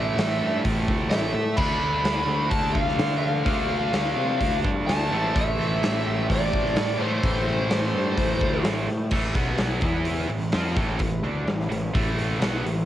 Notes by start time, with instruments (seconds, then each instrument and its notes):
Already playing: picked electric bass A1, distorted electric guitar A2 E3 A3, tonewheel organ E3 A3 A4, lead electric guitar E5
0.17 picked electric bass A1, snare, open hi-hat
0.41 picked electric bass G2
0.65 picked electric bass A1, kick, open hi-hat
0.88 picked electric bass D2, kick
1.10 picked electric bass A1, lead electric guitar E5, snare, open hi-hat
1.34 picked electric bass A2
1.57 picked electric bass D2, distorted electric guitar D3 A3, tonewheel organ D4 F5, lead electric guitar B5, kick, crash
1.61 distorted electric guitar D4
1.80 picked electric bass D2
2.04 picked electric bass D2, snare, open hi-hat
2.27 picked electric bass D2
2.50 picked electric bass D2, lead electric guitar A5, kick, open hi-hat
2.72 picked electric bass D2, lead electric guitar F5, kick
2.88 snare
2.98 picked electric bass D3, snare, open hi-hat
3.18 lead electric guitar F5
3.43 picked electric bass D2, distorted electric guitar D3 A3, kick, open hi-hat
3.48 distorted electric guitar D4
3.93 picked electric bass D2, snare, open hi-hat
4.16 picked electric bass C3
4.41 picked electric bass D2, kick, open hi-hat
4.64 picked electric bass G2, kick
4.87 picked electric bass D2, lead electric guitar A5, snare, open hi-hat
5.11 picked electric bass A1, distorted electric guitar A2 E3 A3
5.15 tonewheel organ A3 E4 C5
5.35 picked electric bass A1, lead electric guitar E5, kick, open hi-hat
5.58 picked electric bass A1
5.83 picked electric bass A1, snare, open hi-hat
6.07 picked electric bass A1
6.30 picked electric bass A1, lead electric guitar D5, kick, open hi-hat
6.54 picked electric bass A1, kick
6.66 snare
6.76 picked electric bass A2, lead electric guitar D5, snare, open hi-hat
6.98 distorted electric guitar A2 E3, lead electric guitar C5
7.02 distorted electric guitar A3
7.23 picked electric bass A1, kick, open hi-hat
7.70 picked electric bass A1, snare, open hi-hat
7.94 picked electric bass G2
8.17 picked electric bass A1, kick, open hi-hat
8.41 picked electric bass D2, kick
8.64 picked electric bass A1, snare, open hi-hat
8.87 picked electric bass A2, snare
9.11 picked electric bass A1, distorted electric guitar A2 E3 A3, tonewheel organ E4 B4, kick, crash
9.15 tonewheel organ A3
9.35 picked electric bass B1, distorted electric guitar B2 F#3 B3, tonewheel organ B3 F#4, kick, open hi-hat
9.58 snare, open hi-hat
9.81 picked electric bass E2, distorted electric guitar E3 B3 E4, tonewheel organ E4 E5, kick, open hi-hat
10.05 open hi-hat
10.29 picked electric bass A1, distorted electric guitar A2 E3, tonewheel organ A3 B4, open hi-hat
10.52 picked electric bass F2, distorted electric guitar F3 C4 F4, snare, open hi-hat
10.76 picked electric bass A1, distorted electric guitar A2 E3 A3, kick, open hi-hat
10.99 picked electric bass A1, distorted electric guitar A2 E3, kick, open hi-hat
11.23 picked electric bass D2, distorted electric guitar D3 A3 D4, open hi-hat
11.46 picked electric bass A1, distorted electric guitar A2 E3, snare, open hi-hat
11.70 picked electric bass A1, distorted electric guitar A2 E3, open hi-hat
11.94 picked electric bass A1, distorted electric guitar A2 E3 A3, kick, open hi-hat
12.19 open hi-hat
12.40 picked electric bass B1, distorted electric guitar B2 F#3 B3, snare, open hi-hat
12.65 picked electric bass A1, distorted electric guitar A2 E3, open hi-hat